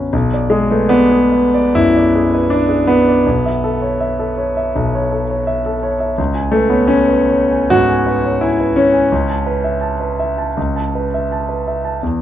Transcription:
Already playing: F#2 D3 B3 C#4 F#4 D5 B5 C#6 F#6
0.13 B1
0.34 D5
0.50 G#3 G#4
0.71 A3 B4
0.89 B3 D5
1.11 G#4
1.32 B4
1.54 D5
1.75 F#2 E4
1.96 D5
2.16 G#4
2.34 B4
2.50 D4 D5
2.69 G#4
2.87 B3 B4
3.08 D5
3.26 B1
3.46 E5
3.64 A4
3.81 C#5
4.00 E5
4.19 A4
4.38 C#5
4.57 E5
4.76 B1
4.95 C#5
5.11 A4
5.30 C#5
5.47 E5
5.66 A4
5.83 C#5
6.00 E5
6.18 C#2
6.35 G#5
6.52 A3 B4
6.70 B3 C#5
6.88 C#4 G#5
7.08 B4
7.29 C#5
7.51 G#5
7.70 G#2 F#4
7.89 G#5
8.07 B4
8.25 C#5
8.41 E4 G#5
8.60 B4
8.76 C#4 C#5
8.94 G#5
9.12 C#2
9.30 A5
9.46 B4
9.64 E5
9.81 A5
10.00 B4
10.19 E5
10.38 A5
10.57 C#2
10.76 A5
10.95 B4
11.14 E5
11.32 A5
11.49 B4
11.67 E5
11.85 A5
12.03 E2

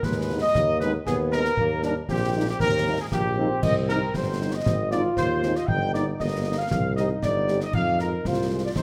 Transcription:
0.02 D#2 G#3 B4, concert bass drum, snare
0.30 G#3 B3 D#4
0.42 D#5
0.55 D#2 A#3, concert bass drum, snare
0.80 G#3 B3 D#4 B4, snare
1.06 D#2 B3 G#4, concert bass drum, snare
1.32 G#3 B3 D#4 A#4, snare
1.45 snare
1.57 D#2 A#3, concert bass drum
1.83 G3 A#3 D4 D#4 A#4, snare
2.09 A#1 C4 G4, concert bass drum, snare
2.35 G3 A#3 D#4
2.49 G4
2.60 D#2 A#4, concert bass drum, snare
2.87 G3 A#3 D#4
3.00 G#4
3.10 A#1 A#3 G4, concert bass drum, snare
3.36 G3 A#3 C4 D#4
3.63 C2 D#5, concert bass drum, crash
3.89 G3 C4 D#4 A#4, snare
4.14 G1 C5, concert bass drum, snare
4.40 G3 C4 D#4
4.53 D#5
4.64 G#1 C4, concert bass drum, snare
4.91 G#3 C4 D#4 F4 D5, snare
5.17 D#2 C5, concert bass drum, snare
5.43 G#3 C4 D#4, snare
5.56 D#5, snare
5.67 G1 D#4 G5, concert bass drum
5.94 A#3 D#4 D5, snare
6.19 G1 A#3 D#5, concert bass drum, snare
6.46 A#3 D#4
6.58 F5
6.71 C2 C4, concert bass drum, snare
6.96 G3 C4 D#4 G4 D#5, snare
7.22 G1 D5, concert bass drum, snare
7.48 G3 C4 G4, snare
7.61 D#5, snare
7.73 F2 F5, concert bass drum, crash
7.99 G#3 C4 F4 A#4, snare
8.25 C2 F4 C5, concert bass drum, snare
8.52 G#3 C4 F4
8.65 D5
8.76 A#1 D#4 C5, concert bass drum, snare

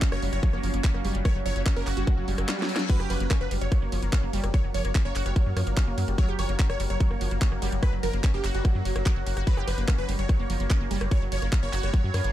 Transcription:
Already playing: F#3 C#4 F#4 C#5 F5
0.02 C#4, kick, clap, closed hi-hat
0.12 F#1 F#3 C#5, cross-stick
0.22 F#1 G3, open hi-hat
0.33 F#1 F#3 C#5, closed hi-hat
0.43 F3, kick, closed hi-hat
0.53 F#1 A#3, cross-stick
0.63 F#1 F3, open hi-hat
0.74 F#1 A#3, closed hi-hat
0.84 C#4, kick, clap, closed hi-hat
0.94 F#1 A#3, cross-stick
1.05 F#1 G3, open hi-hat
1.15 F#1 F#3, closed hi-hat
1.25 F#3 C#5, kick, cross-stick, closed hi-hat
1.35 F#1 F#3
1.46 F#1 F3 C#5, open hi-hat
1.56 F#1 A#3, closed hi-hat
1.66 C#4, kick, cross-stick, clap, closed hi-hat
1.76 F#1 A#3 A#4, open hi-hat
1.87 F#1 F#4, clap, open hi-hat
1.97 F#1 G3 F#4, closed hi-hat
2.07 F#3, kick, cross-stick, closed hi-hat, reverse cymbal
2.18 F#1 F#3
2.28 F#1 G3, open hi-hat
2.38 F#1 A#3, cross-stick, closed hi-hat
2.48 G3, snare, clap, closed hi-hat
2.59 F#3, snare
2.69 F#4, open hi-hat
2.76 F#3, snare, closed hi-hat
2.89 F#3 A#3 A#4 B4, kick, closed hi-hat, ride, crash
3.00 F#1 G4, cross-stick
3.10 F#1 F3 B4, open hi-hat, ride
3.14 F#5
3.20 F#1 A#3, closed hi-hat
3.31 C#4, kick, cross-stick, clap, closed hi-hat, ride
3.41 F#1 F#3 B4
3.51 F#1 G3, open hi-hat, ride
3.61 F#1 F#3 C#5, closed hi-hat
3.72 F#3, kick, cross-stick, closed hi-hat, ride
3.82 F#1 A#3
3.92 F#1 F3, open hi-hat, ride
4.03 F#1 A#3, closed hi-hat
4.13 C#4, kick, cross-stick, clap, closed hi-hat, ride
4.23 F#1 A#3
4.33 F#1 G3, open hi-hat, ride
4.44 F#1 F#3, cross-stick, closed hi-hat
4.54 F#3 C#5, kick, closed hi-hat, ride
4.64 F#1 F#3
4.74 F#1 F3 C#5, open hi-hat, ride
4.85 F#1 A#3, cross-stick, closed hi-hat
4.95 C#4, kick, clap, closed hi-hat, ride
5.05 F#1 A#3 C#5
5.16 F#1 F#4, clap, open hi-hat, ride
5.26 F#1 G3 C#5, cross-stick, closed hi-hat
5.36 F#3, kick, closed hi-hat, ride
5.46 F#2 F#3
5.57 F#2 F3, cross-stick, open hi-hat, ride
5.67 G1 A#3, closed hi-hat
5.77 C#4, kick, clap, closed hi-hat, ride
5.87 F#1 A#3
5.98 F#2 F#3, cross-stick, open hi-hat, ride
6.08 F#1 G3, closed hi-hat
6.18 F#3 C#5, kick, closed hi-hat, ride
6.29 F#1 G4
6.39 F#1 F3 C#5, cross-stick, open hi-hat, ride
6.49 F#1 A#3, closed hi-hat
6.59 C#4, kick, clap, closed hi-hat, ride
6.70 F#1 F#3 C#5, cross-stick
6.80 F#1 G3, open hi-hat, ride
6.90 F#1 F#3 C#5, closed hi-hat
7.00 F#3, kick, closed hi-hat, ride
7.11 F#1 A#3, cross-stick
7.21 F#1 F3, open hi-hat, ride
7.31 F#1 A#3, closed hi-hat
7.42 C#4, kick, clap, closed hi-hat, ride
7.52 F#1 A#3, cross-stick
7.62 F#1 G3, open hi-hat, ride
7.72 F#1 F#3, closed hi-hat
7.83 F#3 B4, kick, cross-stick, closed hi-hat, ride
7.93 F#1 F#3
8.03 F#1 F3 A#4, open hi-hat, ride
8.13 F#1 A#3, closed hi-hat
8.24 C#4, kick, cross-stick, clap, closed hi-hat, ride
8.34 F#1 A#3 G4
8.44 F#1 F#4, clap, open hi-hat, ride
8.55 F#1 G3 F#4, closed hi-hat
8.65 F#3, kick, cross-stick, closed hi-hat, ride
8.75 F#2 F#3
8.85 F#1 F#3, open hi-hat, ride
8.96 F#1 F#3, cross-stick, closed hi-hat
9.06 F#3, kick, clap, closed hi-hat, ride
9.16 F#1 F#4
9.26 F#1 F#4, open hi-hat, ride
9.37 F#1 F#4, cross-stick, closed hi-hat
9.47 F#3 B4 C#5, kick, closed hi-hat, ride
9.57 F#1 G4, cross-stick
9.68 F#1 F3 B4, open hi-hat, ride
9.72 B5
9.78 F#1 A#3, closed hi-hat
9.88 C#4, kick, cross-stick, clap, closed hi-hat, ride
9.98 F#1 F#3 B4
10.09 F#1 G3, open hi-hat, ride
10.19 F#1 F#3 C#5, closed hi-hat
10.29 F#3, kick, cross-stick, closed hi-hat, ride
10.39 F#1 A#3
10.50 F#1 F3, open hi-hat, ride
10.60 F#1 A#3, closed hi-hat
10.70 C#4, kick, cross-stick, clap, closed hi-hat, ride
10.81 F#1 A#3
10.91 F#1 G3, open hi-hat, ride
11.01 F#1 F#3, cross-stick, closed hi-hat
11.11 F#3 C#5, kick, closed hi-hat, ride
11.22 F#1 F#3
11.32 F#1 F3 C#5, open hi-hat, ride
11.42 F#1 A#3, cross-stick, closed hi-hat
11.52 C#4, kick, clap, closed hi-hat, ride
11.63 F#1 A#3 C#5
11.73 F#1 F#4, clap, open hi-hat, ride
11.83 F#1 G3 C#5, cross-stick, closed hi-hat
11.94 F#3, kick, closed hi-hat, ride
12.04 F#2 F#3
12.14 F#2 F3, cross-stick, open hi-hat, ride
12.24 G1 A#3, closed hi-hat

